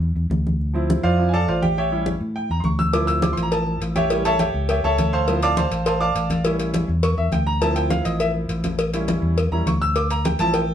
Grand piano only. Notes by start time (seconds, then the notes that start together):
0.73 F3 C4 E4
1.03 F4 C5 D5 F5
1.18 F3 C4 E4
1.29 G#5
1.33 A4 D5 F5 A5
1.48 F4 C5 D5 F5
1.62 G4 G5
1.78 G4 C#5 E5 G5
1.91 G3 C#4 E4
2.36 G5
2.51 A#5
2.60 C6
2.65 C#6
2.79 E6
2.93 F3 C4 E4 D6
3.07 E6
3.23 D6
3.33 C6
3.43 A#5
3.52 A5
3.96 G4 C#5 E5 G5
4.10 G3 C#4 E4
4.25 A4 C#5 E5 A5
4.39 G4 C#5 E5 G5
4.70 G4 C#5 E5 G5
4.84 A4 C#5 E5 A5
5.13 C5 F5 A5 C6
5.28 F3 C4 E4
5.43 D5 F5 A5 D6
5.57 C5 F5 A5 C6
5.86 C5 F5 A5 C6
6.01 D5 F5 A5 D6
6.44 G3 C#4 E4
7.03 C#6
7.18 E5
7.33 G5
7.47 A#5
7.61 F3 C4 E4 A5
7.76 G5
7.90 F5
8.05 D#5
8.20 E5
8.93 G3 C#4 E4
9.52 G3 C#4 E4 A#5
9.67 C#6
9.82 E6
9.96 D6
10.11 A#5
10.26 G5
10.40 F3 C4 E4 A5
10.54 G5